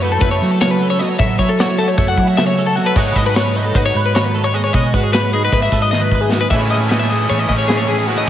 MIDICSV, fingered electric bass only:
0, 0, Header, 1, 2, 480
1, 0, Start_track
1, 0, Tempo, 393701
1, 1461, Time_signature, 9, 3, 24, 8
1, 10112, End_track
2, 0, Start_track
2, 0, Title_t, "Fingered electric bass"
2, 0, Program_c, 0, 33
2, 0, Note_on_c, 0, 42, 91
2, 222, Note_off_c, 0, 42, 0
2, 262, Note_on_c, 0, 42, 98
2, 487, Note_off_c, 0, 42, 0
2, 510, Note_on_c, 0, 54, 89
2, 1416, Note_off_c, 0, 54, 0
2, 1460, Note_on_c, 0, 45, 116
2, 1686, Note_off_c, 0, 45, 0
2, 1695, Note_on_c, 0, 54, 89
2, 2374, Note_off_c, 0, 54, 0
2, 2415, Note_on_c, 0, 42, 96
2, 2643, Note_off_c, 0, 42, 0
2, 2653, Note_on_c, 0, 54, 96
2, 3567, Note_off_c, 0, 54, 0
2, 3613, Note_on_c, 0, 44, 107
2, 3841, Note_off_c, 0, 44, 0
2, 3851, Note_on_c, 0, 44, 95
2, 4531, Note_off_c, 0, 44, 0
2, 4573, Note_on_c, 0, 44, 101
2, 4801, Note_off_c, 0, 44, 0
2, 4816, Note_on_c, 0, 44, 95
2, 5727, Note_off_c, 0, 44, 0
2, 5783, Note_on_c, 0, 47, 108
2, 6006, Note_off_c, 0, 47, 0
2, 6022, Note_on_c, 0, 44, 90
2, 6697, Note_off_c, 0, 44, 0
2, 6734, Note_on_c, 0, 44, 95
2, 6961, Note_off_c, 0, 44, 0
2, 6976, Note_on_c, 0, 44, 97
2, 7888, Note_off_c, 0, 44, 0
2, 7930, Note_on_c, 0, 45, 95
2, 8847, Note_off_c, 0, 45, 0
2, 8902, Note_on_c, 0, 45, 79
2, 9124, Note_off_c, 0, 45, 0
2, 9131, Note_on_c, 0, 45, 83
2, 10049, Note_off_c, 0, 45, 0
2, 10112, End_track
0, 0, End_of_file